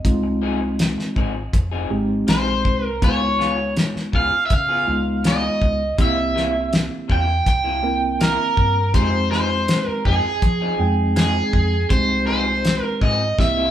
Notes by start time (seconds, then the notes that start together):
Already playing: D#5
0.04 C2 G#3 C4 D#4 F4, kick, closed hi-hat
0.24 muted clean electric guitar stroke
0.42 F3 C4 D#4 G#4
0.61 muted clean electric guitar stroke
0.79 snare, closed hi-hat
0.98 muted clean electric guitar stroke, snare
1.16 G#1 F3 C4 D#4 G#4, kick
1.35 muted clean electric guitar stroke
1.53 F1, muted clean electric guitar stroke, kick, closed hi-hat
1.71 F3 C4 D#4 G#4
1.90 G#1 G#3 C4 D#4 G4, muted clean electric guitar stroke
2.27 A#1 F3 C4 D#4 G#4 C5, snare, closed hi-hat
2.46 muted clean electric guitar stroke
2.64 C2, muted clean electric guitar stroke, kick
2.85 A#4
3.02 C#2 C#3 G#3 B3 D#4 F4 G#4 C#5, kick, closed hi-hat
3.21 muted clean electric guitar stroke
3.38 C#3 B3 F4 G#4, snare
3.57 muted clean electric guitar stroke
3.76 snare, closed hi-hat
3.94 muted clean electric guitar stroke, muted fingered electric bass stroke, snare
4.12 C#2 C#3 B3 F4 G#4 F5, kick
4.32 muted clean electric guitar stroke, muted fingered electric bass stroke
4.46 E5
4.50 C#3 F5, muted clean electric guitar stroke, kick, closed hi-hat
4.69 C#3 B3 F4 G#4
4.87 C#2 G#3 B3 D#4 F4, muted clean electric guitar stroke
5.24 C#3 B3 F4 G#4 D#5, snare, closed hi-hat
5.43 muted clean electric guitar stroke
5.61 C#2, muted clean electric guitar stroke, kick
5.98 C2 C3 G3 A#3 C4 E4 G4, kick, closed hi-hat
6.02 E5
6.17 muted clean electric guitar stroke
6.35 C3 G3 A#3 E4, snare
6.53 muted clean electric guitar stroke
6.73 snare, closed hi-hat
6.90 muted clean electric guitar stroke
7.08 E2 C3 G3 A#3 E4, kick
7.12 G5
7.27 muted clean electric guitar stroke
7.46 C2 G5, muted clean electric guitar stroke, kick, closed hi-hat
7.64 C3 G3 A#3 E4
7.83 A#3 C4 E4 A#4, muted clean electric guitar stroke
8.19 C3 G3 A#3 E4 A#4, snare, closed hi-hat
8.38 muted clean electric guitar stroke
8.57 G2, muted clean electric guitar stroke, kick
8.94 F2 F3 G#3 C4 D#4 G4 G#4 C5, kick, closed hi-hat
9.13 muted clean electric guitar stroke
9.30 F3 C4 D#4 G#4 C5, snare
9.49 muted clean electric guitar stroke
9.68 snare, closed hi-hat
9.86 A#4, muted clean electric guitar stroke, muted fingered electric bass stroke
10.05 F2 F3 C4 D#4 G#4, kick
10.24 muted clean electric guitar stroke, muted fingered electric bass stroke
10.42 F3, muted clean electric guitar stroke, kick, closed hi-hat
10.61 F3 C4 D#4 G#4
10.79 F2 G#3 C4 D#4 G5, muted clean electric guitar stroke
11.16 F3 C4 D#4 G#4, snare, closed hi-hat
11.36 muted clean electric guitar stroke
11.53 F2, muted clean electric guitar stroke, kick
11.90 C2 G#3 C4 D#4 G4 C5, kick, closed hi-hat
12.09 muted clean electric guitar stroke
12.27 F3 C4 D#4 G#4 C5
12.46 muted clean electric guitar stroke
12.65 snare, closed hi-hat
12.82 A#4, muted clean electric guitar stroke
13.01 G#2 F3 C4 D#4 G#4 D#5, kick
13.20 muted clean electric guitar stroke
13.38 C2 A#3 C4 E4 G4 E5, muted clean electric guitar stroke, kick, snare
13.57 C3 G3 A#3 E4